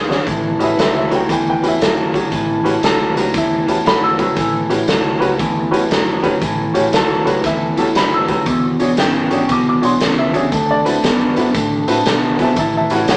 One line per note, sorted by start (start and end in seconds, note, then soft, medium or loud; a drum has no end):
0.00 0.20 C#2 medium
0.08 0.25 E2 medium
0.08 0.25 C#3 medium
0.08 0.17 D4 medium
0.08 0.18 F#4 medium
0.08 0.18 G#4 medium
0.08 0.18 C#5 medium
0.08 snare medium
0.26 0.56 A1 medium
0.26 0.56 A2 medium
0.26 0.56 E3 medium
0.26 kick loud
0.26 closed hi-hat medium
0.59 0.75 A1 medium
0.59 0.76 A2 medium
0.59 0.76 E3 medium
0.59 0.68 C#4 medium
0.59 0.69 F#4 medium
0.59 0.69 G4 medium
0.59 0.62 B4 medium
0.59 0.64 D#5 medium
0.59 closed hi-hat medium
0.63 0.78 B4 medium
0.63 0.79 E5 medium
0.77 1.07 C#2 medium
0.77 1.08 A2 medium
0.77 1.08 F#3 medium
0.77 0.95 B4 medium
0.77 0.96 E5 medium
0.77 snare loud
0.77 closed hi-hat medium
0.97 1.10 B4 medium
0.97 1.13 E5 medium
1.10 1.27 C#2 medium
1.10 1.27 A2 medium
1.10 1.27 F#3 medium
1.10 1.20 C#4 medium
1.10 1.20 F#4 medium
1.10 1.20 G4 medium
1.10 1.20 B4 medium
1.10 closed hi-hat medium
1.15 1.30 G5 medium
1.29 1.58 E2 medium
1.29 1.59 A2 medium
1.29 1.60 E3 loud
1.29 1.46 B4 medium
1.29 1.47 G5 medium
1.29 kick loud
1.29 closed hi-hat medium
1.49 1.62 B4 medium
1.49 1.65 G5 medium
1.62 1.78 E2 medium
1.62 1.79 A2 medium
1.62 1.79 E3 medium
1.62 1.72 C#4 medium
1.62 1.72 F#4 medium
1.62 1.72 G4 medium
1.62 1.72 B4 medium
1.62 closed hi-hat medium
1.68 2.16 E5 medium
1.80 2.25 F#2 medium
1.80 2.10 A2 medium
1.80 2.11 F#3 medium
1.80 snare loud
1.80 closed hi-hat medium
2.14 2.30 A2 medium
2.14 2.30 F#3 medium
2.14 2.23 C#4 medium
2.14 2.23 F#4 medium
2.14 2.23 G4 medium
2.14 2.23 C#5 medium
2.14 kick medium
2.14 closed hi-hat medium
2.31 2.61 A1 medium
2.31 2.62 A2 medium
2.31 2.62 E3 medium
2.31 kick loud
2.31 closed hi-hat medium
2.64 2.81 A1 medium
2.64 2.81 A2 medium
2.64 2.81 E3 medium
2.64 2.74 C#4 medium
2.64 2.74 F#4 medium
2.64 2.74 G4 medium
2.64 2.74 B4 medium
2.64 closed hi-hat medium
2.82 3.11 C#2 medium
2.82 3.12 A2 medium
2.82 3.13 F#3 loud
2.82 3.17 A4 medium
2.82 snare loud
2.82 closed hi-hat medium
3.15 3.32 C#2 medium
3.15 3.32 A2 medium
3.15 3.32 F#3 medium
3.15 3.25 C#4 medium
3.15 3.25 F#4 medium
3.15 3.26 G4 medium
3.15 3.26 B4 medium
3.15 closed hi-hat medium
3.34 3.63 E2 medium
3.34 3.64 A2 medium
3.34 3.64 E3 loud
3.34 kick loud
3.34 snare soft
3.34 closed hi-hat medium
3.38 3.69 E5 medium
3.66 3.83 E2 medium
3.66 3.83 A2 medium
3.66 3.83 E3 medium
3.66 3.77 C#4 medium
3.66 3.77 F#4 medium
3.66 3.77 G4 medium
3.66 3.77 B4 medium
3.66 closed hi-hat medium
3.70 3.86 A5 medium
3.85 4.30 F#2 medium
3.85 4.15 A2 medium
3.85 4.15 F#3 medium
3.85 4.03 B5 loud
3.85 snare loud
3.85 closed hi-hat medium
4.03 4.53 E6 loud
4.18 4.35 A2 medium
4.18 4.35 F#3 medium
4.18 4.28 C#4 medium
4.18 4.28 F#4 medium
4.18 4.28 G4 medium
4.18 4.28 B4 medium
4.18 kick medium
4.18 closed hi-hat medium
4.36 4.66 A1 medium
4.36 4.67 A2 medium
4.36 4.67 E3 medium
4.36 kick loud
4.36 closed hi-hat medium
4.69 4.86 A1 medium
4.69 4.86 A2 medium
4.69 4.86 E3 medium
4.69 4.79 C#4 medium
4.69 4.79 F#4 medium
4.69 4.79 G4 medium
4.69 4.79 B4 medium
4.69 closed hi-hat medium
4.88 5.17 C#2 medium
4.88 5.18 A2 medium
4.88 5.18 F#3 medium
4.88 snare loud
4.88 closed hi-hat medium
5.19 5.37 C#2 medium
5.19 5.37 A2 medium
5.19 5.38 F#3 medium
5.19 5.29 C#4 medium
5.19 5.30 F#4 medium
5.19 5.30 G4 medium
5.19 5.30 B4 loud
5.19 closed hi-hat medium
5.39 5.69 E2 medium
5.39 5.69 A2 medium
5.39 5.69 E3 loud
5.39 kick loud
5.39 closed hi-hat medium
5.71 5.88 E2 medium
5.71 5.87 A2 medium
5.71 5.89 E3 medium
5.71 5.81 C#4 medium
5.71 5.81 F#4 medium
5.71 5.81 G4 medium
5.71 5.81 B4 loud
5.71 closed hi-hat medium
5.89 6.35 F#2 medium
5.89 6.20 A2 medium
5.89 6.20 F#3 loud
5.89 snare loud
5.89 closed hi-hat medium
6.23 6.40 A2 medium
6.23 6.40 F#3 medium
6.23 6.32 C#4 medium
6.23 6.32 F#4 medium
6.23 6.33 G4 medium
6.23 6.33 B4 loud
6.23 kick medium
6.23 closed hi-hat medium
6.41 6.71 A1 medium
6.41 6.71 A2 medium
6.41 6.72 E3 medium
6.41 kick loud
6.41 closed hi-hat medium
6.74 6.91 A1 medium
6.74 6.91 A2 medium
6.74 6.92 E3 medium
6.74 6.83 C#4 medium
6.74 6.84 F#4 medium
6.74 6.84 G4 medium
6.74 6.84 C#5 medium
6.74 closed hi-hat medium
6.92 7.22 C#2 medium
6.92 7.23 A2 medium
6.92 7.23 F#3 loud
6.92 7.28 A4 loud
6.92 snare loud
6.92 closed hi-hat medium
7.25 7.42 C#2 medium
7.25 7.42 A2 medium
7.25 7.43 F#3 medium
7.25 7.35 C#4 medium
7.25 7.35 F#4 medium
7.25 7.35 G4 medium
7.25 7.27 B4 medium
7.25 7.45 B4 medium
7.25 closed hi-hat medium
7.44 7.73 E2 medium
7.44 7.74 A2 medium
7.44 7.75 E3 loud
7.44 7.78 E5 medium
7.44 kick loud
7.44 snare soft
7.44 closed hi-hat medium
7.77 7.93 E2 medium
7.77 7.94 A2 medium
7.77 7.94 E3 medium
7.77 7.87 C#4 medium
7.77 7.87 F#4 medium
7.77 7.87 G4 medium
7.77 7.87 A4 medium
7.77 closed hi-hat medium
7.81 7.97 A5 medium
7.95 8.40 F#1 medium
7.95 8.25 A2 medium
7.95 8.26 F#3 medium
7.95 8.13 B5 medium
7.95 snare loud
7.95 closed hi-hat medium
8.14 8.63 E6 loud
8.28 8.45 A2 medium
8.28 8.45 F#3 medium
8.28 8.38 C#4 medium
8.28 8.38 F#4 medium
8.28 8.38 G4 medium
8.28 8.38 B4 medium
8.28 kick medium
8.28 closed hi-hat medium
8.46 8.76 E1 loud
8.46 8.77 E2 medium
8.46 8.77 B2 medium
8.46 kick loud
8.46 closed hi-hat medium
8.79 8.96 E1 medium
8.79 8.96 E2 medium
8.79 8.97 B2 medium
8.79 8.89 D4 medium
8.79 8.89 F#4 medium
8.79 8.89 G#4 medium
8.79 8.89 C#5 medium
8.79 closed hi-hat medium
8.97 9.27 G#1 medium
8.97 9.28 E2 medium
8.97 9.29 C#3 medium
8.97 9.49 G5 loud
8.97 snare loud
8.97 closed hi-hat medium
9.30 9.47 G#1 medium
9.30 9.47 E2 medium
9.30 9.48 C#3 medium
9.30 9.40 D4 medium
9.30 9.40 F#4 medium
9.30 9.40 G#4 medium
9.30 9.40 C#5 medium
9.30 closed hi-hat medium
9.47 9.78 B1 medium
9.47 9.79 E2 medium
9.47 9.80 B2 loud
9.47 9.51 C#6 medium
9.47 kick loud
9.47 snare soft
9.47 closed hi-hat medium
9.52 9.67 D6 medium
9.69 9.84 D6 medium
9.81 9.98 B1 medium
9.81 9.98 E2 medium
9.81 9.99 B2 medium
9.81 9.91 D4 medium
9.81 9.91 F#4 medium
9.81 9.91 G#4 medium
9.81 9.91 C#5 medium
9.81 10.17 C6 medium
9.81 closed hi-hat medium
10.00 10.45 C#2 medium
10.00 10.30 E2 medium
10.00 10.31 C#3 loud
10.00 snare loud
10.00 closed hi-hat medium
10.19 10.68 E5 medium
10.33 10.50 E2 medium
10.33 10.50 C#3 medium
10.33 10.43 D4 medium
10.33 10.43 F#4 medium
10.33 10.43 G#4 medium
10.33 10.43 C#5 medium
10.33 kick medium
10.33 closed hi-hat medium
10.52 10.81 D2 medium
10.52 10.82 D3 medium
10.52 10.82 A3 medium
10.52 kick loud
10.52 closed hi-hat medium
10.71 11.69 D5 medium
10.85 11.01 D2 medium
10.85 11.01 D3 medium
10.85 11.02 A3 medium
10.85 10.94 C4 medium
10.85 10.94 E4 medium
10.85 10.94 F#4 medium
10.85 10.94 B4 medium
10.85 closed hi-hat medium
11.03 11.32 F#2 medium
11.03 11.33 D3 medium
11.03 11.33 B3 loud
11.03 snare loud
11.03 closed hi-hat medium
11.36 11.52 F#2 medium
11.36 11.53 D3 medium
11.36 11.53 B3 medium
11.36 11.45 C4 medium
11.36 11.45 E4 medium
11.36 11.45 F#4 medium
11.36 11.46 B4 medium
11.36 closed hi-hat medium
11.54 11.84 A2 medium
11.54 11.84 D3 medium
11.54 11.85 A3 medium
11.54 kick loud
11.54 closed hi-hat medium
11.87 12.03 A2 medium
11.87 12.04 D3 medium
11.87 12.05 A3 medium
11.87 11.97 C4 medium
11.87 11.97 E4 medium
11.87 11.97 F#4 medium
11.87 11.97 B4 loud
11.87 closed hi-hat medium
12.06 12.51 B2 medium
12.06 12.36 D3 medium
12.06 12.36 B3 medium
12.06 snare loud
12.06 closed hi-hat medium
12.38 12.55 D3 medium
12.38 12.56 B3 medium
12.38 12.48 C4 medium
12.38 12.48 E4 medium
12.38 12.49 F#4 medium
12.38 12.48 B4 medium
12.38 12.57 E5 medium
12.38 12.42 G#5 medium
12.38 kick medium
12.38 snare soft
12.38 closed hi-hat medium
12.43 12.58 A5 loud
12.56 12.86 A1 medium
12.56 12.87 A2 medium
12.56 12.87 E3 medium
12.56 12.74 E5 medium
12.56 12.75 A5 medium
12.56 kick loud
12.56 closed hi-hat medium
12.77 12.92 E5 medium
12.77 12.92 A5 medium
12.90 13.06 A1 medium
12.90 13.07 A2 medium
12.90 13.07 E3 medium
12.90 12.99 C#4 medium
12.90 12.99 F#4 medium
12.90 13.00 G4 medium
12.90 13.00 B4 medium
12.90 13.08 C#5 medium
12.90 13.09 F#5 medium
12.90 closed hi-hat medium
13.08 13.17 C#2 medium
13.08 13.17 A2 medium
13.08 13.17 F#3 loud
13.08 13.17 C#5 medium
13.08 13.17 F#5 loud
13.08 snare loud
13.08 closed hi-hat medium